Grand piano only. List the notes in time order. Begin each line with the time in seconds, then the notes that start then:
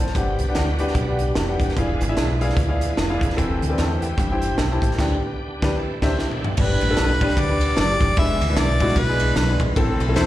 0.00 C5 A5
0.15 G2 D4 G4 B4 F#5
0.48 D4 G4 B4 F#5
0.80 D4 G4 B4 F#5
1.08 D4 G4 B4 F#5
1.48 D4 G4 B4 F#5
1.77 E3 E4 G#4 D5 F5
2.09 E4 G#4 D5 E5
2.41 E4 G#4 D5 F5
2.68 E4 G#4 D5 F5
3.10 E4 G#4 D5 F5
3.37 E3 C4 A4 B4 G5
3.70 C4 A4 B4 D5
3.78 C5 A5
4.02 B4 G5
4.19 G2
4.31 E4 G4 C5 G5
4.71 E4 G4 C5 A5
5.00 D3 D4 G4 B4 G5
5.63 D4 G4 B4
6.02 D4 G4 C5 E5
6.60 G2 D4 G4 B4
6.90 D4 G4 A4
7.22 D4 G4 B4
7.49 D4 G4 B4
7.89 D4 G4 D5
8.18 E3 G#3 B3 D4 E4 B4
8.49 G#3 B3 D4 E4 B4
8.81 G#3 B3 D4 E4 F#4
9.09 G#3 B3 D4 E4 G#4
9.49 G#3 B3 D4 E4 B4
9.76 A2 C4 E4 A4
10.08 C4 E4 A4